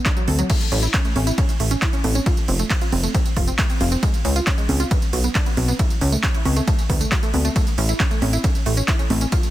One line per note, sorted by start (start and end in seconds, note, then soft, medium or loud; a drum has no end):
0.06 0.12 D4 medium
0.06 kick loud
0.06 clap loud
0.06 closed hi-hat medium
0.06 tambourine soft
0.17 0.26 F#3 loud
0.17 closed hi-hat medium
0.17 tambourine soft
0.28 0.43 D2 medium
0.28 0.32 A4 medium
0.28 open hi-hat loud
0.28 high conga medium
0.39 0.48 F#3 loud
0.39 closed hi-hat medium
0.39 tambourine medium
0.50 0.56 A3 medium
0.50 kick loud
0.50 closed hi-hat medium
0.50 crash medium
0.50 ride medium
0.50 tambourine soft
0.61 closed hi-hat medium
0.61 tambourine soft
0.72 0.87 A1 loud
0.72 0.78 C#4 medium
0.72 open hi-hat loud
0.83 0.89 E4 medium
0.83 closed hi-hat medium
0.83 tambourine medium
0.94 1.00 C#4 medium
0.94 kick loud
0.94 clap loud
0.94 closed hi-hat medium
0.94 ride medium
0.94 tambourine soft
1.05 1.11 A3 medium
1.05 closed hi-hat medium
1.05 tambourine soft
1.16 1.32 A1 medium
1.16 1.20 C#4 medium
1.16 open hi-hat loud
1.16 high conga medium
1.27 1.37 E4 medium
1.27 closed hi-hat medium
1.27 tambourine medium
1.38 1.44 C#4 medium
1.38 kick loud
1.38 closed hi-hat medium
1.38 ride medium
1.38 tambourine soft
1.49 closed hi-hat medium
1.49 tambourine soft
1.60 1.76 A1 medium
1.60 1.67 A3 medium
1.60 open hi-hat loud
1.71 1.78 C#4 medium
1.71 closed hi-hat medium
1.71 tambourine medium
1.82 1.89 E4 medium
1.82 kick loud
1.82 clap loud
1.82 closed hi-hat medium
1.82 ride medium
1.82 tambourine soft
1.93 2.00 C#4 medium
1.93 closed hi-hat medium
1.93 tambourine soft
2.04 2.20 A1 loud
2.04 2.08 A3 medium
2.04 open hi-hat loud
2.04 high conga medium
2.15 2.25 C#4 medium
2.15 closed hi-hat medium
2.15 tambourine medium
2.26 2.33 F4 medium
2.26 kick loud
2.26 closed hi-hat medium
2.26 ride medium
2.26 tambourine medium
2.37 closed hi-hat medium
2.37 tambourine soft
2.48 2.64 F1 loud
2.48 2.55 C4 medium
2.48 open hi-hat loud
2.59 2.66 A3 medium
2.59 closed hi-hat medium
2.59 tambourine medium
2.70 2.77 C4 medium
2.70 kick loud
2.70 clap loud
2.70 closed hi-hat medium
2.70 ride medium
2.70 tambourine soft
2.81 2.88 F4 medium
2.81 closed hi-hat medium
2.81 tambourine soft
2.92 3.08 F1 loud
2.92 2.96 C4 medium
2.92 open hi-hat loud
2.92 high conga medium
3.03 3.13 A3 medium
3.03 closed hi-hat medium
3.03 tambourine medium
3.14 3.21 C4 medium
3.14 kick loud
3.14 closed hi-hat medium
3.14 ride medium
3.14 tambourine soft
3.26 closed hi-hat medium
3.26 tambourine soft
3.37 3.52 F1 medium
3.37 3.43 F4 medium
3.37 kick medium
3.37 open hi-hat loud
3.48 3.54 C4 medium
3.48 closed hi-hat medium
3.48 tambourine medium
3.59 3.68 A3 medium
3.59 kick loud
3.59 clap loud
3.59 closed hi-hat medium
3.59 ride medium
3.59 tambourine soft
3.70 3.76 C4 medium
3.70 closed hi-hat medium
3.70 tambourine soft
3.81 3.96 F1 loud
3.81 3.85 F4 medium
3.81 open hi-hat loud
3.81 high conga medium
3.92 3.98 C4 medium
3.92 closed hi-hat medium
3.92 tambourine medium
4.03 4.09 G#3 medium
4.03 kick loud
4.03 closed hi-hat medium
4.03 ride medium
4.03 tambourine soft
4.14 closed hi-hat medium
4.14 tambourine soft
4.25 4.40 C#2 loud
4.25 4.31 C#4 medium
4.25 open hi-hat loud
4.36 4.42 F4 medium
4.36 closed hi-hat medium
4.36 tambourine medium
4.47 4.53 C#4 medium
4.47 kick loud
4.47 clap loud
4.47 closed hi-hat medium
4.47 ride medium
4.47 tambourine medium
4.58 4.64 G#3 medium
4.58 closed hi-hat medium
4.58 tambourine soft
4.69 4.85 C#2 medium
4.69 4.73 C#4 medium
4.69 open hi-hat loud
4.69 high conga medium
4.80 4.90 F4 medium
4.80 closed hi-hat medium
4.80 tambourine medium
4.91 4.97 B3 medium
4.91 kick loud
4.91 closed hi-hat medium
4.91 ride medium
4.91 tambourine medium
5.02 closed hi-hat medium
5.02 tambourine soft
5.13 5.29 B1 medium
5.13 5.20 F#3 medium
5.13 open hi-hat loud
5.24 5.31 B3 medium
5.24 closed hi-hat medium
5.24 tambourine medium
5.35 5.42 D4 medium
5.35 kick loud
5.35 clap loud
5.35 closed hi-hat medium
5.35 ride medium
5.35 tambourine soft
5.46 5.53 B3 medium
5.46 closed hi-hat medium
5.46 tambourine soft
5.57 5.73 B1 loud
5.57 5.61 F#3 medium
5.57 open hi-hat loud
5.57 high conga medium
5.68 5.78 B3 medium
5.68 closed hi-hat medium
5.68 tambourine medium
5.79 5.86 E4 medium
5.79 kick loud
5.79 closed hi-hat medium
5.79 ride medium
5.79 tambourine medium
5.90 closed hi-hat soft
5.90 tambourine soft
6.01 6.17 C#2 loud
6.01 6.08 C#4 medium
6.01 open hi-hat loud
6.12 6.19 A3 medium
6.12 closed hi-hat soft
6.12 tambourine medium
6.23 6.30 C#4 medium
6.23 kick loud
6.23 clap loud
6.23 closed hi-hat medium
6.23 ride medium
6.23 tambourine medium
6.34 6.41 E4 medium
6.34 closed hi-hat medium
6.34 tambourine soft
6.45 6.61 C#2 loud
6.45 6.49 C#4 medium
6.45 open hi-hat loud
6.45 high conga medium
6.56 6.66 A3 medium
6.56 closed hi-hat medium
6.56 tambourine medium
6.68 6.74 A3 medium
6.68 kick loud
6.68 closed hi-hat medium
6.68 ride medium
6.68 tambourine medium
6.79 closed hi-hat medium
6.79 tambourine soft
6.90 7.05 D2 medium
6.90 6.96 B3 medium
6.90 kick medium
6.90 open hi-hat loud
7.01 7.07 A3 medium
7.01 closed hi-hat medium
7.01 tambourine medium
7.12 7.21 F#3 medium
7.12 kick loud
7.12 clap loud
7.12 closed hi-hat medium
7.12 ride medium
7.12 tambourine medium
7.23 7.29 A3 medium
7.23 closed hi-hat medium
7.23 tambourine soft
7.34 7.49 D2 medium
7.34 7.38 B3 medium
7.34 open hi-hat loud
7.34 high conga medium
7.45 7.51 A3 medium
7.45 closed hi-hat medium
7.45 tambourine medium
7.56 7.62 A3 medium
7.56 kick loud
7.56 closed hi-hat medium
7.56 ride medium
7.56 tambourine medium
7.67 closed hi-hat soft
7.67 tambourine soft
7.78 7.93 A1 loud
7.78 7.84 C#4 medium
7.78 open hi-hat loud
7.89 7.95 E4 medium
7.89 closed hi-hat soft
7.89 tambourine medium
8.00 8.06 C#4 medium
8.00 kick loud
8.00 clap loud
8.00 closed hi-hat medium
8.00 ride medium
8.00 tambourine medium
8.11 8.17 A3 medium
8.11 closed hi-hat medium
8.11 tambourine soft
8.22 8.38 A1 loud
8.22 8.26 C#4 medium
8.22 open hi-hat loud
8.22 high conga medium
8.33 8.43 E4 medium
8.33 closed hi-hat medium
8.33 tambourine medium
8.44 8.50 C#4 medium
8.44 kick loud
8.44 closed hi-hat medium
8.44 ride medium
8.44 tambourine medium
8.55 closed hi-hat medium
8.55 tambourine soft
8.66 8.82 A1 medium
8.66 8.73 A3 medium
8.66 open hi-hat loud
8.77 8.84 C#4 medium
8.77 closed hi-hat soft
8.77 tambourine medium
8.88 8.95 E4 medium
8.88 kick loud
8.88 clap loud
8.88 closed hi-hat medium
8.88 ride medium
8.88 tambourine medium
8.99 9.06 C#4 medium
8.99 closed hi-hat medium
8.99 tambourine soft
9.10 9.26 A1 loud
9.10 9.14 A3 medium
9.10 open hi-hat loud
9.10 high conga medium
9.21 9.31 C#4 medium
9.21 closed hi-hat medium
9.21 tambourine medium
9.32 9.39 F4 medium
9.32 kick loud
9.32 closed hi-hat medium
9.32 ride medium
9.32 tambourine medium
9.43 closed hi-hat medium
9.43 tambourine soft